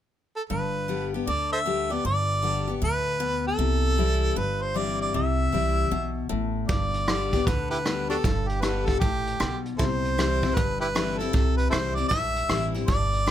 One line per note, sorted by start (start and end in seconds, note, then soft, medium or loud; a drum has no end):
0.36 0.42 A4 medium
0.50 1.19 G1 medium
0.50 1.25 G2 medium
0.50 1.09 B4 medium
0.88 1.12 D3 soft
0.88 1.13 G3 soft
0.88 1.13 B3 medium
0.88 1.13 G4 soft
1.14 1.28 B3 soft
1.14 1.27 G4 medium
1.27 1.96 D2 medium
1.27 1.64 D3 medium
1.27 1.51 D5 medium
1.52 1.61 A4 medium
1.52 1.59 C5 medium
1.52 1.94 E5 medium
1.66 1.90 D3 medium
1.66 1.90 G3 soft
1.66 1.90 B3 medium
1.66 1.89 G4 medium
1.90 2.05 B3 soft
1.90 2.04 G4 medium
1.90 2.05 D5 medium
2.05 2.73 G1 medium
2.05 2.80 G2 medium
2.05 2.79 D5 medium
2.42 2.67 D3 medium
2.42 2.67 G3 soft
2.42 2.68 B3 medium
2.42 2.66 G4 soft
2.68 2.82 B3 soft
2.68 2.81 G4 soft
2.82 3.51 D2 medium
2.82 3.19 A2 medium
2.82 3.43 B4 medium
3.20 3.58 B2 medium
3.47 4.39 A4 medium
3.58 4.28 C2 medium
3.58 4.34 C3 medium
3.98 4.35 E3 medium
3.98 4.36 G3 soft
3.98 4.36 C4 soft
3.98 4.36 E4 medium
4.36 5.06 G1 medium
4.36 5.11 G2 medium
4.36 4.64 B4 medium
4.62 4.79 C5 medium
4.74 5.12 E3 soft
4.74 5.13 G3 medium
4.74 5.13 C4 medium
4.74 5.13 E4 medium
4.74 5.01 D5 medium
5.02 5.14 D5 medium
5.14 5.49 C2 medium
5.14 5.89 C3 medium
5.14 6.27 E5 medium
5.52 5.86 C2 medium
5.52 5.90 E3 soft
5.52 5.90 G3 soft
5.52 5.91 C4 medium
5.52 5.91 E4 medium
5.91 6.25 B1 medium
5.91 6.29 B2 medium
6.29 6.63 A1 medium
6.29 6.67 A2 medium
6.68 7.38 G1 medium
6.68 7.44 G2 medium
6.68 7.48 D5 medium
6.68 kick loud
6.68 closed hi-hat medium
6.94 closed hi-hat soft
7.08 7.32 D3 medium
7.08 7.32 G3 soft
7.08 7.33 B3 medium
7.08 7.32 G4 medium
7.08 cross-stick loud
7.08 closed hi-hat medium
7.33 7.47 B3 soft
7.33 7.46 G4 medium
7.33 kick medium
7.33 closed hi-hat soft
7.46 8.16 D2 medium
7.46 7.84 D3 medium
7.46 7.70 B4 medium
7.46 kick medium
7.46 closed hi-hat medium
7.70 7.78 E4 soft
7.70 7.78 G4 soft
7.70 8.07 B4 medium
7.70 closed hi-hat medium
7.86 8.09 D3 soft
7.86 8.10 G3 medium
7.86 8.10 B3 medium
7.86 8.09 G4 medium
7.86 cross-stick medium
7.86 closed hi-hat medium
8.09 8.24 B3 soft
8.09 8.17 D4 medium
8.09 8.17 F#4 medium
8.09 8.23 G4 medium
8.09 8.50 A4 medium
8.09 closed hi-hat medium
8.24 8.93 G1 medium
8.24 8.99 G2 medium
8.24 kick medium
8.24 closed hi-hat medium
8.48 8.63 G4 medium
8.48 closed hi-hat medium
8.61 9.00 D3 soft
8.61 9.00 G3 medium
8.61 9.00 B3 medium
8.61 9.00 G4 soft
8.61 8.88 B4 medium
8.61 cross-stick loud
8.61 closed hi-hat medium
8.86 8.99 A4 medium
8.86 kick medium
8.86 closed hi-hat soft
9.00 9.34 A1 medium
9.00 9.39 A2 medium
9.00 9.60 G4 medium
9.00 kick medium
9.00 closed hi-hat medium
9.27 closed hi-hat medium
9.40 9.74 B1 medium
9.40 9.77 B2 medium
9.40 cross-stick loud
9.40 closed hi-hat medium
9.65 closed hi-hat medium
9.78 10.48 C2 medium
9.78 10.54 C3 medium
9.78 9.85 E4 medium
9.78 9.84 A4 medium
9.78 10.57 C5 medium
9.78 kick medium
9.78 closed hi-hat medium
10.05 closed hi-hat medium
10.18 10.42 E3 medium
10.18 10.42 G3 medium
10.18 10.42 C4 medium
10.18 10.41 E4 medium
10.18 cross-stick medium
10.18 closed hi-hat medium
10.43 10.57 C4 soft
10.43 10.56 E4 medium
10.43 kick medium
10.43 closed hi-hat soft
10.55 11.25 G1 medium
10.55 11.31 G2 medium
10.55 10.80 B4 medium
10.55 kick medium
10.55 closed hi-hat medium
10.81 10.87 E4 medium
10.81 10.87 G4 medium
10.81 11.20 B4 medium
10.81 closed hi-hat medium
10.95 11.19 E3 medium
10.95 11.19 G3 medium
10.95 11.19 C4 medium
10.95 11.19 E4 medium
10.95 cross-stick loud
10.95 closed hi-hat medium
11.18 11.34 C4 soft
11.18 11.33 E4 medium
11.18 11.56 A4 medium
11.18 closed hi-hat medium
11.33 11.68 C2 medium
11.33 12.08 C3 medium
11.33 kick medium
11.33 closed hi-hat medium
11.57 11.70 B4 medium
11.57 closed hi-hat medium
11.70 12.05 C2 medium
11.70 11.96 E3 soft
11.70 11.97 G3 medium
11.70 11.97 C4 medium
11.70 11.78 E4 medium
11.70 11.97 E4 medium
11.70 11.78 A4 medium
11.70 11.97 C5 medium
11.70 cross-stick loud
11.70 closed hi-hat medium
11.95 12.11 E4 medium
11.95 12.08 D5 medium
11.95 closed hi-hat soft
11.99 12.12 C4 soft
12.08 12.44 B1 medium
12.08 12.86 G2 medium
12.08 12.69 E5 loud
12.08 kick medium
12.08 closed hi-hat medium
12.36 closed hi-hat medium
12.49 12.82 A1 medium
12.49 12.73 E3 medium
12.49 12.73 G3 medium
12.49 12.74 C4 medium
12.49 12.73 E4 medium
12.49 cross-stick medium
12.49 closed hi-hat medium
12.75 12.89 C4 soft
12.75 12.88 E4 soft
12.75 closed hi-hat medium
12.86 13.31 G1 medium
12.86 13.31 G2 medium
12.86 13.31 D5 medium
12.86 kick medium
12.86 closed hi-hat medium
13.13 closed hi-hat soft
13.26 13.31 D3 soft
13.26 13.31 G3 soft
13.26 13.31 B3 medium
13.26 13.31 G4 medium
13.26 cross-stick medium
13.26 closed hi-hat medium